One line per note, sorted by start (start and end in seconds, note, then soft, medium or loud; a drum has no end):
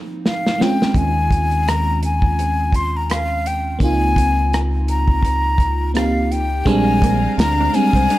0.00 0.54 G#2 medium
0.00 0.55 F3 medium
0.00 0.56 A#3 medium
0.00 0.56 C4 medium
0.00 0.57 D#4 medium
0.26 0.63 F5 medium
0.26 snare medium
0.47 snare medium
0.58 3.40 G#3 medium
0.58 3.41 C4 soft
0.58 3.42 C#4 soft
0.58 0.99 G5 medium
0.58 snare medium
0.64 3.43 F4 medium
0.82 snare medium
0.94 3.77 D#2 medium
0.94 1.70 G#5 medium
0.94 kick medium
0.94 closed hi-hat medium
1.31 kick medium
1.31 closed hi-hat medium
1.51 closed hi-hat soft
1.68 2.03 A#5 medium
1.68 cross-stick medium
1.68 closed hi-hat medium
2.03 2.77 G#5 medium
2.03 closed hi-hat medium
2.22 kick medium
2.39 closed hi-hat medium
2.72 2.98 C6 medium
2.72 kick medium
2.72 closed hi-hat medium
2.97 3.13 A#5 medium
3.10 3.48 F5 medium
3.10 cross-stick loud
3.10 closed hi-hat medium
3.46 3.81 G5 medium
3.46 closed hi-hat medium
3.79 6.62 C#2 medium
3.79 5.90 A#3 medium
3.79 5.91 C4 medium
3.79 5.92 D#4 medium
3.79 4.59 G#5 medium
3.79 kick medium
3.79 closed hi-hat medium
3.84 5.93 F4 medium
4.16 kick medium
4.16 closed hi-hat medium
4.53 cross-stick loud
4.53 closed hi-hat medium
4.88 5.92 A#5 medium
4.88 closed hi-hat medium
5.08 kick medium
5.23 kick medium
5.23 closed hi-hat medium
5.58 kick medium
5.58 closed hi-hat soft
5.94 6.66 A#3 soft
5.94 6.65 C4 soft
5.94 6.67 D#4 soft
5.94 6.67 G4 soft
5.94 6.33 F5 medium
5.94 cross-stick loud
5.94 closed hi-hat medium
6.31 6.69 G5 medium
6.31 closed hi-hat medium
6.65 7.26 A#1 medium
6.65 7.56 G3 loud
6.65 7.55 G#3 loud
6.65 7.55 C4 medium
6.65 8.19 D4 medium
6.65 7.55 D4 medium
6.65 8.19 C5 medium
6.65 8.19 F5 medium
6.65 7.40 G#5 loud
6.65 8.19 A#5 medium
6.65 kick loud
6.65 closed hi-hat medium
7.02 7.19 A#3 medium
7.02 kick medium
7.02 closed hi-hat medium
7.38 7.68 D2 medium
7.38 7.76 A#5 medium
7.38 snare loud
7.38 closed hi-hat medium
7.60 7.71 D4 medium
7.73 8.19 G3 medium
7.73 8.19 G#3 medium
7.73 8.19 C4 medium
7.73 8.19 D4 medium
7.73 8.19 G#5 loud
7.73 muted clean electric guitar stroke soft
7.73 closed hi-hat medium
7.93 8.06 C2 medium
7.93 8.06 C4 medium
7.93 kick medium
7.93 closed hi-hat soft
8.10 8.19 D4 medium
8.10 closed hi-hat medium